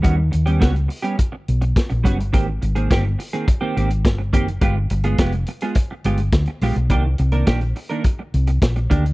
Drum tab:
HH |x-xxxxoxx-xxxxxx|x-xxx-oxx-xxx-xx|x-xxxxxxx-xxxxox|x-xxxxoxx-xxxxxx|
SD |----o-------o---|----o-------o---|----o-------o-o-|----o-------o---|
BD |o---o---o---o-o-|o---o---o---o-o-|o---o---o---o---|o---o---o---o-o-|